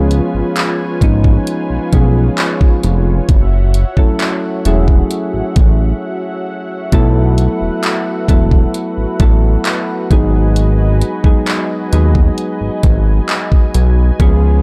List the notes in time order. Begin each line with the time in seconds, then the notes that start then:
Already playing: C#2 F3 G#3 B3 C#4 F4 G#4 B4 C#5 G#5
0.11 closed hi-hat
0.34 G#1
0.56 clap, closed hi-hat
1.01 G#1 F3 G#3 B3 C#4 D#4, kick, closed hi-hat
1.24 kick
1.47 closed hi-hat
1.70 B1
1.93 B1 F3 G#3 B3 C#4 G#4, kick, closed hi-hat
2.38 clap, closed hi-hat
2.61 kick
2.83 F1, closed hi-hat
3.29 F#1 F#4 E5 F#5, kick, closed hi-hat
3.74 closed hi-hat
3.97 E1 F#3 A3 C#4 E4 A4, kick
4.20 clap, closed hi-hat
4.65 E1 F#3 A3 C#4 E4 G#4, closed hi-hat
4.88 kick
5.11 closed hi-hat
5.34 A1
5.56 A1, kick, closed hi-hat
6.92 B1 F#3 A3 B3 E4 A4 B4, kick, closed hi-hat
7.38 closed hi-hat
7.61 E1
7.83 clap, closed hi-hat
8.28 E1 F#3 A3 B3 E4 A4, kick, closed hi-hat
8.51 kick
8.74 closed hi-hat
8.97 A1
9.20 A1 F#3 A3 B3 E4 A4, kick, closed hi-hat
9.65 clap, closed hi-hat
10.10 G#1 F#3 G#3 B3 D#4 G#4 D#5 G#5, kick, closed hi-hat
10.56 closed hi-hat
11.02 closed hi-hat
11.24 D#2 F#3 G#3 B3 D#4 G#4, kick
11.47 clap, closed hi-hat
11.92 D#2 F#3 G#3 B3 D#4 G#4, closed hi-hat
12.15 kick
12.38 closed hi-hat
12.61 G#1
12.83 G#1, kick, closed hi-hat
13.29 clap, closed hi-hat
13.52 kick
13.74 B1, closed hi-hat
14.20 C#2 F3 G#3 B3 C#4 F4 G#4 B4 C#5, kick, closed hi-hat